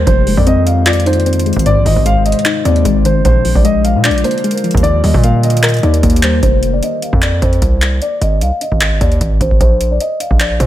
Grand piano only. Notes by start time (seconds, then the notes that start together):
0.07 C5
0.37 D5
0.47 D#5
0.66 F5
0.87 D5
1.07 C5
1.66 D5
1.85 D#5
2.06 F5
2.26 D#5
2.65 D5
3.05 C5
3.25 C5
3.56 D5
3.65 D#5
3.84 F5
4.04 D5
4.24 C5
4.83 D5
5.04 D#5
5.23 F5
5.44 D#5
5.83 D5
6.23 C5
6.43 C5
6.73 D5
6.83 D#5
7.02 F5
7.23 D5
7.42 C5
8.02 D5
8.21 D#5
8.42 F5
8.61 D#5
9.01 D5
9.41 C5
9.61 C5
9.91 D5
10.00 D#5
10.40 D5
10.60 C5